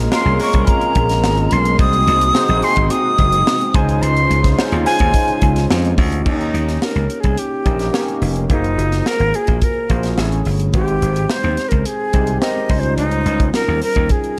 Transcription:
Already playing: tine electric piano G#3 A#3 C#4 F4 A#4, string section G#3 A#3 C#4
0.12 tine electric piano G#3 A#3 C#4 F4 A#4, flute C6, snare
0.25 slap bass C2
0.39 tine electric piano G#3 A#3 C4 F4 A#4, flute C#6, open hi-hat
0.47 tine electric piano C#4
0.53 slap bass C2, kick, closed hi-hat
0.67 flute A#5, kick, closed hi-hat
0.81 closed hi-hat
0.95 slap bass A#1, kick, closed hi-hat
1.09 snare, closed hi-hat
1.24 slap bass G#1, snare
1.37 closed hi-hat
1.51 slap bass B1, flute C6, closed hi-hat
1.65 closed hi-hat
1.78 slap bass C2, string section C3 F#4, tine electric piano G#3 C4 D#4 F#4 C5, flute D#6, kick, closed hi-hat
1.93 closed hi-hat
2.07 slap bass C2, closed hi-hat
2.21 closed hi-hat
2.35 tine electric piano G#3 C4 D#4 F#4 C5, snare
2.48 slap bass A#1, closed hi-hat
2.62 tine electric piano G#3 C4 D#4 F#4 G#4, flute C6, open hi-hat
2.76 slap bass G#1, kick, closed hi-hat
2.90 flute D#6, closed hi-hat
3.18 slap bass F#1, kick, closed hi-hat
3.32 closed hi-hat
3.47 snare
3.61 closed hi-hat
3.74 slap bass C#2, string section C#3 D#4 F4 C5, tine electric piano G#3 C#4 D#4 F4 C5, flute G#5, kick, closed hi-hat
3.89 closed hi-hat
4.02 slap bass C#2, flute C6, closed hi-hat
4.17 closed hi-hat
4.30 slap bass C#2, closed hi-hat
4.44 kick, snare, closed hi-hat
4.58 tine electric piano G#3 C#4 D#4 F4 C5, snare
4.72 slap bass D#2, closed hi-hat
4.85 tine electric piano G#3 C#4 D#4 F4 C5, flute G#5, snare, open hi-hat
4.99 slap bass D#2, kick, closed hi-hat
5.14 kick, closed hi-hat
5.28 closed hi-hat
5.42 slap bass C#2, kick, closed hi-hat
5.56 snare, closed hi-hat
5.70 slap bass F2, snare
5.85 closed hi-hat
5.98 slap bass D2, kick, open hi-hat
6.12 closed hi-hat
6.25 slap bass D#2, tine electric piano A#3 C#4 D#4 G4 C#5, flute D#4, kick, crash
6.41 closed hi-hat
6.54 slap bass D#2, closed hi-hat
6.68 snare, closed hi-hat
6.82 flute A#4, snare
6.95 slap bass C#2, closed hi-hat
7.10 closed hi-hat
7.20 slap bass C2, flute G#4, kick, closed hi-hat
7.38 flute G4, closed hi-hat
7.65 slap bass A#1, tine electric piano A#3 C#4 D#4 G4 D#5, kick, closed hi-hat
7.79 snare, closed hi-hat
7.93 tine electric piano A#3 C#4 D#4 G4 C#5, snare
8.08 closed hi-hat
8.21 slap bass F1, open hi-hat
8.36 closed hi-hat
8.49 slap bass F#1, tine electric piano A#3 F4 F#4 G#4 C5, flute D#4, kick, closed hi-hat
8.64 closed hi-hat
8.78 slap bass F#1, closed hi-hat
8.92 snare, closed hi-hat
9.06 flute A#4, snare
9.20 slap bass G#1, closed hi-hat
9.34 flute G#4, closed hi-hat
9.47 slap bass A#1, kick, closed hi-hat
9.62 flute A#4, kick, closed hi-hat
9.89 slap bass A#1, tine electric piano A#3 F4 F#4 G#4 C5, kick, closed hi-hat
10.03 snare, closed hi-hat
10.17 slap bass A1, tine electric piano A3 C#4 E4 G#4 C#5, snare
10.32 closed hi-hat
10.45 slap bass G1, open hi-hat
10.60 closed hi-hat
10.73 slap bass G#1, tine electric piano G#3 C4 D#4 G4 B4, flute G4, kick, closed hi-hat
10.81 tine electric piano C5
10.88 closed hi-hat
11.02 slap bass G#1, closed hi-hat
11.16 closed hi-hat
11.29 flute C5, snare
11.43 slap bass D#2, closed hi-hat
11.57 snare, closed hi-hat
11.69 slap bass C#2, flute A#4, kick, closed hi-hat
11.85 flute G#4, closed hi-hat
12.13 slap bass C2, tine electric piano G#3 C4 D#4 G4 C5, kick, closed hi-hat
12.27 closed hi-hat
12.41 tine electric piano G#3 C4 D#4 G4 A#4, flute D#5, snare
12.69 slap bass C#2, tine electric piano G3 C#4 D#4 F4 C5, kick, open hi-hat
12.80 flute C5, closed hi-hat
12.97 slap bass C#2, flute D#4, closed hi-hat
13.11 closed hi-hat
13.26 slap bass C#2, closed hi-hat
13.40 kick, closed hi-hat
13.54 flute A#4, snare
13.68 slap bass D#2
13.82 flute A#4, open hi-hat
13.95 slap bass D#2, kick, closed hi-hat
14.09 flute G#4, kick, closed hi-hat
14.24 closed hi-hat

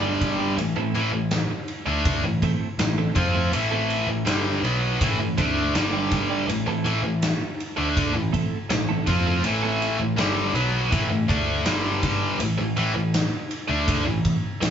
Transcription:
Already playing: picked electric bass G1, distorted electric guitar G2 D3 G3
0.02 clean electric guitar G3 D4 G4 D5
0.21 kick, snare, ride
0.39 clean electric guitar G3 D4 G4 D5
0.58 picked electric bass A1, distorted electric guitar A2 E3, ride
0.75 picked electric bass A1, distorted electric guitar A2 E3, clean electric guitar A3 C4 E4 A4
0.94 picked electric bass A1, distorted electric guitar A2 E3, ride
1.12 picked electric bass A1, distorted electric guitar A2 E3
1.31 muted clean electric guitar stroke, snare, ride
1.51 muted clean electric guitar stroke
1.68 ride
1.86 picked electric bass D2, distorted electric guitar D3 A3 D4
2.05 kick, ride
2.24 picked electric bass A1, distorted electric guitar A2 E3, muted clean electric guitar stroke
2.42 clean electric guitar A3 C4 E4 A4, kick, ride
2.78 picked electric bass A1, distorted electric guitar A2 E3, muted clean electric guitar stroke, snare, ride
2.98 clean electric guitar A3 C4 E4 A4
3.15 picked electric bass F2, distorted electric guitar F3 C4 F4, kick, ride
3.35 clean electric guitar A3 C4 E4 A4
3.52 picked electric bass A1, distorted electric guitar A2 E3 A3, ride
3.71 clean electric guitar A3 C4 E4 A4
3.90 ride
4.07 picked electric bass A1, distorted electric guitar A2 E3
4.25 picked electric bass G1, distorted electric guitar G2 D3 G3, muted clean electric guitar stroke, snare, ride
4.45 muted clean electric guitar stroke
4.63 picked electric bass B1, distorted electric guitar B2 F#3 B3, ride
5.01 picked electric bass A1, distorted electric guitar A2 E3, kick, ride
5.19 picked electric bass A1, distorted electric guitar A2 E3, muted clean electric guitar stroke
5.38 picked electric bass D2, distorted electric guitar D3 A3 D4, clean electric guitar A3 C4 E4 A4, kick, ride
5.74 picked electric bass G1, distorted electric guitar G2 D3 G3, muted clean electric guitar stroke, snare, ride
5.93 clean electric guitar G3 D4 G4 D5
6.11 kick, ride
6.30 clean electric guitar G3 D4 G4 D5
6.48 picked electric bass A1, distorted electric guitar A2 E3, ride
6.66 picked electric bass A1, distorted electric guitar A2 E3, clean electric guitar A3 C4 E4 A4
6.84 picked electric bass A1, distorted electric guitar A2 E3, ride
7.03 picked electric bass A1, distorted electric guitar A2 E3
7.22 muted clean electric guitar stroke, snare, ride
7.41 muted clean electric guitar stroke
7.60 ride
7.77 picked electric bass D2, distorted electric guitar D3 A3 D4
7.97 kick, ride
8.15 picked electric bass A1, distorted electric guitar A2 E3, muted clean electric guitar stroke
8.33 clean electric guitar A3 C4 E4 A4, kick, ride
8.70 picked electric bass A1, distorted electric guitar A2 E3, muted clean electric guitar stroke, snare, ride
8.89 clean electric guitar A3 C4 E4 A4
9.07 picked electric bass F2, distorted electric guitar F3 C4 F4, kick, ride
9.26 clean electric guitar A3 C4 E4 A4
9.44 picked electric bass A1, distorted electric guitar A2 E3 A3, ride
9.63 clean electric guitar A3 C4 E4 A4
9.82 ride
9.98 picked electric bass A1, distorted electric guitar A2 E3
10.17 picked electric bass G1, distorted electric guitar G2 D3 G3, muted clean electric guitar stroke, snare, ride
10.38 muted clean electric guitar stroke
10.54 picked electric bass B1, distorted electric guitar B2 F#3 B3, ride
10.91 picked electric bass A1, distorted electric guitar A2 E3, kick, ride
11.09 picked electric bass A1, distorted electric guitar A2 E3
11.28 picked electric bass D2, distorted electric guitar D3 A3 D4, kick, ride
11.65 picked electric bass G1, distorted electric guitar G2 D3 G3, snare, ride
12.03 kick, snare, ride
12.39 picked electric bass A1, distorted electric guitar A2 E3, ride
12.58 picked electric bass A1, distorted electric guitar A2 E3
12.77 picked electric bass A1, distorted electric guitar A2 E3, ride
12.95 picked electric bass A1, distorted electric guitar A2 E3
13.14 snare, ride
13.51 ride
13.68 picked electric bass D2, distorted electric guitar D3 A3 D4
13.88 kick, ride
14.06 picked electric bass A1, distorted electric guitar A2 E3
14.25 kick, ride
14.61 picked electric bass A1, distorted electric guitar A2 E3, snare, ride

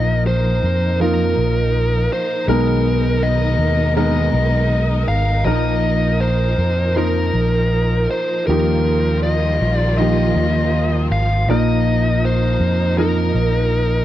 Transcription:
Already playing: fretless electric bass A#1, grand piano A#2 F3 A#3 D#4 A#4, string section F3 D#4 A#4, lead electric guitar D#5
0.27 lead electric guitar C5
0.63 fretless electric bass F2
1.00 grand piano F3 A#3 D#4 F4, lead electric guitar A#4
1.37 fretless electric bass A#1
2.13 lead electric guitar C5
2.48 fretless electric bass B1, string section B2 D#3 G#3, grand piano B2 G#3 B3 D#4 A#4, lead electric guitar A#4
3.23 lead electric guitar D#5
3.58 fretless electric bass D#2
3.96 grand piano G#3 B3 D#4 A#4, lead electric guitar D#5
4.33 fretless electric bass B1
5.08 fretless electric bass G#1, lead electric guitar F5
5.45 fretless electric bass A#1, grand piano A#2 F3 A#3 D#4 A#4, string section F3, lead electric guitar D#5
6.21 lead electric guitar C5
6.58 fretless electric bass F2
6.96 grand piano F3 A#3 D#4 C5, lead electric guitar A#4
7.33 fretless electric bass A#1
8.11 lead electric guitar C5
8.47 fretless electric bass D#2, string section D#3 G3 F4, grand piano F3 A#3 D#4 G4, lead electric guitar A#4
9.23 lead electric guitar D#5
9.61 fretless electric bass A#1
9.77 lead electric guitar D5
9.98 grand piano F3 A#3 D#4 G4, lead electric guitar D#5
10.35 fretless electric bass D#2
11.10 fretless electric bass G#1, lead electric guitar F5
11.48 fretless electric bass A#1, grand piano A#2 F3 A#3 D#4 A#4, string section D#4, lead electric guitar D#5
12.25 lead electric guitar C5
12.60 fretless electric bass F2
12.98 grand piano F3 A#3 D#4 A#4, lead electric guitar A#4
13.34 fretless electric bass A#1

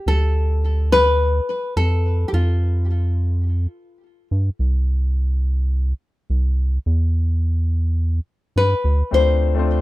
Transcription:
0.06 analog synth bass D2, nylon-string guitar A4
0.92 nylon-string guitar B4
1.76 analog synth bass F2, nylon-string guitar A4
2.28 nylon-string guitar G4
2.33 analog synth bass F2, nylon-string guitar F4
4.31 analog synth bass G2
4.59 analog synth bass C2
6.30 analog synth bass C2
6.86 analog synth bass E2
8.56 analog synth bass G2, nylon-string guitar B4
8.84 analog synth bass D2
9.11 analog synth bass D2, grand piano A3 C4 D4 F4 C5, nylon-string guitar C5
9.55 grand piano A3 C4 D4 F4
9.59 grand piano C5

